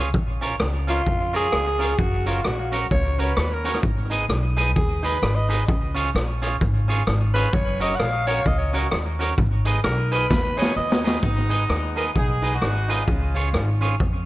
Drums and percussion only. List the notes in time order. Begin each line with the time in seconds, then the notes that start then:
0.14 kick
0.42 closed hi-hat
0.60 cross-stick
0.88 closed hi-hat
1.07 kick
1.35 closed hi-hat
1.52 cross-stick
1.81 closed hi-hat
1.99 kick
2.26 closed hi-hat
2.45 cross-stick
2.72 closed hi-hat
2.91 kick
3.19 closed hi-hat
3.37 cross-stick
3.65 closed hi-hat
3.74 cross-stick
3.83 kick
4.11 closed hi-hat
4.30 cross-stick
4.58 closed hi-hat
4.76 kick
5.04 closed hi-hat
5.23 cross-stick
5.50 closed hi-hat
5.68 kick
5.96 closed hi-hat
6.16 cross-stick
6.42 closed hi-hat
6.61 kick
6.90 closed hi-hat
7.07 cross-stick
7.35 closed hi-hat
7.53 kick
7.81 closed hi-hat
8.00 cross-stick
8.27 closed hi-hat
8.46 kick
8.74 closed hi-hat
8.91 cross-stick
9.20 closed hi-hat
9.38 kick
9.65 closed hi-hat
9.84 cross-stick
10.11 closed hi-hat
10.30 kick, snare
10.62 snare
10.92 snare
11.07 snare
11.23 kick
11.50 closed hi-hat
11.70 cross-stick
11.97 closed hi-hat
12.16 kick
12.44 closed hi-hat
12.62 cross-stick
12.90 closed hi-hat
13.08 kick
13.36 closed hi-hat
13.54 cross-stick
13.82 closed hi-hat
14.00 kick